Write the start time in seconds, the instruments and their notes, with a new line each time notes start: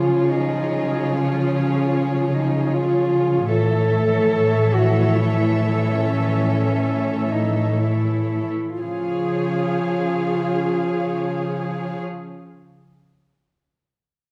Already playing: cello section C#3, viola section F3 F4, cello F4, violin section G#4 C#5
0.32 cello D#4
1.14 cello C#4
2.34 cello D#4
2.73 cello F4
3.50 cello section A2, viola section E3 A4, cello A4, violin section C#5 E5
4.74 cello F#4
5.15 cello E4
5.98 cello C#4
7.32 cello D#4
7.79 cello E4
8.79 cello section C#3, viola section F3 G#4, cello F4, violin section C#5 F5